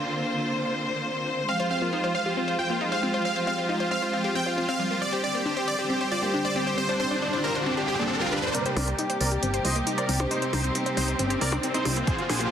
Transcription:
Already playing: string section D3 A#3 C4 F4 C5
1.48 string section F3 G#3 C4 G4, synth pluck C4, supersaw synth F5
1.60 supersaw synth F4, synth pluck C5
1.71 synth pluck C4, supersaw synth F5
1.82 synth pluck A#3, supersaw synth F4
1.93 synth pluck D#4, supersaw synth F4
2.04 supersaw synth F4, synth pluck C5
2.15 synth pluck C5, supersaw synth F5
2.26 supersaw synth F4, synth pluck G4
2.37 synth pluck C4, supersaw synth F4
2.48 supersaw synth F4, synth pluck C5
2.59 synth pluck F4, supersaw synth G5
2.70 synth pluck A#3, supersaw synth F4
2.81 synth pluck D#4, supersaw synth F4
2.92 synth pluck C5, supersaw synth F5
3.03 synth pluck C4, supersaw synth F4
3.14 supersaw synth F4, synth pluck C5
3.25 synth pluck C4, supersaw synth F5
3.36 supersaw synth F4, synth pluck C5
3.47 synth pluck C4, supersaw synth F5
3.58 supersaw synth F4, synth pluck C5
3.69 synth pluck D#4, supersaw synth F4
3.80 supersaw synth F4, synth pluck C5
3.91 synth pluck C4, supersaw synth F5
4.02 supersaw synth F4, synth pluck C5
4.13 synth pluck C4, supersaw synth F4
4.24 supersaw synth F4, synth pluck G4
4.35 synth pluck C4, supersaw synth G5
4.46 supersaw synth F4, synth pluck C5
4.57 synth pluck C4, supersaw synth F4
4.68 synth pluck C4, supersaw synth F5
4.79 synth pluck G3, supersaw synth F4
4.90 synth pluck A#3, supersaw synth F4
5.01 string section D3 G3 C5, synth pluck C4, supersaw synth D5, riser
5.12 supersaw synth G4, synth pluck C5
5.24 synth pluck C4, supersaw synth D5
5.35 synth pluck A#3, supersaw synth G4
5.46 synth pluck D4, supersaw synth G4
5.57 supersaw synth G4, synth pluck C5
5.68 synth pluck C5, supersaw synth D5
5.79 supersaw synth G4, synth pluck G4
5.90 synth pluck C4, supersaw synth G4
6.01 supersaw synth G4, synth pluck C5
6.11 synth pluck F4, supersaw synth D5
6.23 synth pluck A#3, supersaw synth G4
6.33 synth pluck D4, supersaw synth G4
6.45 synth pluck C5, supersaw synth D5
6.56 synth pluck C4, supersaw synth G4
6.67 supersaw synth G4, synth pluck C5
6.78 synth pluck C4, string section F4, supersaw synth C5
6.89 supersaw synth D4, synth pluck C5
7.00 synth pluck C4, supersaw synth C5
7.11 supersaw synth D4, synth pluck C5
7.22 supersaw synth D4, synth pluck D4
7.33 supersaw synth D4, synth pluck C5
7.44 synth pluck C4, supersaw synth A#4
7.55 supersaw synth D4, synth pluck C5
7.66 synth pluck C4, supersaw synth D4
7.77 supersaw synth D4, synth pluck G4
7.88 supersaw synth G4, synth pluck G4
7.99 synth pluck A#3, supersaw synth D4
8.10 synth pluck C4, supersaw synth D4
8.21 supersaw synth F4, synth pluck G4
8.32 supersaw synth D4, synth pluck G4
8.43 supersaw synth D4, synth pluck C5
8.54 string section C3 G3 A#3 D#4 G4, synth pluck C4, supersaw synth A#4 D5, closed hi-hat, riser
8.66 supersaw synth G4, synth pluck C5, closed hi-hat
8.77 fm bass C2, synth pluck C4, supersaw synth A#4 D5, open hi-hat, percussion blips
8.88 synth pluck A#3, supersaw synth G4, closed hi-hat
8.99 synth pluck D#4, supersaw synth G4, closed hi-hat
9.10 supersaw synth G4, synth pluck C5, closed hi-hat
9.21 fm bass C2, supersaw synth A#4 D5, synth pluck C5, open hi-hat
9.32 supersaw synth G4, synth pluck G4, closed hi-hat
9.43 fm bass G1, synth pluck C4, supersaw synth G4, closed hi-hat
9.54 supersaw synth G4, synth pluck C5, closed hi-hat
9.65 fm bass C2, synth pluck F4, supersaw synth C5 D#5, open hi-hat
9.76 synth pluck A#3, supersaw synth G4, closed hi-hat
9.87 synth pluck D#4, supersaw synth G4, closed hi-hat
9.98 supersaw synth A#4 D5, synth pluck C5, closed hi-hat
10.09 fm bass C2, synth pluck C4, supersaw synth G4, open hi-hat
10.20 supersaw synth G4, synth pluck C5, closed hi-hat, percussion blips
10.31 synth pluck C4, supersaw synth D#4 C5, closed hi-hat
10.42 supersaw synth C4, synth pluck C5, closed hi-hat
10.53 fm bass C2, synth pluck C4, supersaw synth D#4 C5, open hi-hat, percussion blips
10.64 supersaw synth C4, synth pluck C5, closed hi-hat
10.75 supersaw synth C4, synth pluck D#4, closed hi-hat
10.86 supersaw synth C4, synth pluck C5, closed hi-hat
10.97 fm bass C2, synth pluck C4, supersaw synth D#4 C5, open hi-hat
11.08 supersaw synth C4, synth pluck C5, closed hi-hat
11.19 fm bass G1, supersaw synth C4, synth pluck C4, closed hi-hat
11.30 supersaw synth C4, synth pluck G4, closed hi-hat
11.41 fm bass C2, synth pluck C4, supersaw synth A#4 D5, open hi-hat
11.52 supersaw synth C4, synth pluck C5, closed hi-hat, percussion blips
11.63 supersaw synth C4, synth pluck C4, closed hi-hat
11.74 synth pluck C4, supersaw synth D#4 C5, closed hi-hat
11.85 fm bass C2, synth pluck G3, supersaw synth C4, open hi-hat, percussion blips
11.96 synth pluck A#3, supersaw synth C4, closed hi-hat
12.07 string section F3 A#3 D4 F4, synth pluck C4, supersaw synth G#4 C5, kick, closed hi-hat
12.18 supersaw synth F4, synth pluck C5, closed hi-hat
12.29 fm bass A#1, synth pluck C4, supersaw synth G#4 C5, open hi-hat, percussion blips
12.40 synth pluck A#3, supersaw synth F4, closed hi-hat

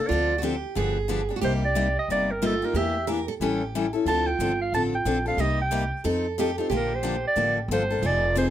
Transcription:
0.00 steel-string acoustic guitar A#3 D4 A4
0.08 upright bass D2, steel-string acoustic guitar D3 F4, clarinet D5
0.12 steel-string acoustic guitar F3 C4 D4 A4
0.38 steel-string acoustic guitar D3 F#4
0.43 steel-string acoustic guitar F3 C4 D4 G4 A4
0.75 upright bass G1, steel-string acoustic guitar D3 F3 B3 D4 G4 G#4
1.08 steel-string acoustic guitar D3 F3 B3 D4 G4
1.29 steel-string acoustic guitar B3 D4 G4
1.36 steel-string acoustic guitar F#4
1.41 upright bass C2, steel-string acoustic guitar C3 G3 A#3 D#4 G4, clarinet C5
1.65 clarinet D5
1.75 steel-string acoustic guitar C3 G3 A#3 D#4 G4
1.99 clarinet D#5
2.08 upright bass G1, steel-string acoustic guitar C3 G3 A#3 D#4 G4, clarinet D5
2.31 clarinet A#4
2.42 steel-string acoustic guitar C3 G3 A#3 D#4 F4 G4
2.46 clarinet A4
2.62 steel-string acoustic guitar A#3 D#4 G4, clarinet A#4
2.74 upright bass E2, steel-string acoustic guitar E3 A#3 D4 G4, clarinet E5
3.07 steel-string acoustic guitar E3 A#3 D4 G4 A#4
3.28 steel-string acoustic guitar A4
3.40 upright bass A1, steel-string acoustic guitar E3 G3 C#4 E4 G4 A4
3.75 steel-string acoustic guitar E3 G3 C#4 E4 A4
3.93 steel-string acoustic guitar C#4 E4 A4
4.06 upright bass D2, steel-string acoustic guitar D3 F3 C4 D4 F4 A4, clarinet A5
4.27 clarinet G5
4.39 upright bass G1, steel-string acoustic guitar D3 F3 C4 D4 A4
4.61 clarinet F5
4.72 upright bass A1, steel-string acoustic guitar D3 F3 C4 D4 A4, clarinet A5
4.95 clarinet G5
5.05 upright bass A#1, steel-string acoustic guitar D3 F3 C4 D4 A4
5.26 steel-string acoustic guitar C4 D4 A4, clarinet F5
5.37 upright bass C2, steel-string acoustic guitar C3 G3 A#3 D#4 G4
5.41 clarinet D#5
5.62 clarinet G5
5.71 steel-string acoustic guitar C3 G3 A#3 D#4 G4
6.04 upright bass F2, steel-string acoustic guitar F3 C4 D#4 A4
6.38 steel-string acoustic guitar F3 C4 D#4 G4 A4
6.58 steel-string acoustic guitar C4 D#4 F4 A4
6.70 upright bass A#1, steel-string acoustic guitar D3 F3 A#3 D4 G4 A4
6.77 clarinet A#4
6.95 clarinet C5
7.03 steel-string acoustic guitar D3 F3 A#3 D4 A4
7.27 clarinet D5
7.36 upright bass A1, steel-string acoustic guitar D3 F3 A#3 D4 A4
7.68 upright bass G1, steel-string acoustic guitar D3 F3 A#3 D4 A4
7.73 clarinet C5
7.90 steel-string acoustic guitar A#3 D4 A4
8.02 upright bass F1, steel-string acoustic guitar F3 C4 D#4 F4 G#4
8.06 clarinet D5
8.35 steel-string acoustic guitar F3 C4 D#4 G#4, clarinet C5

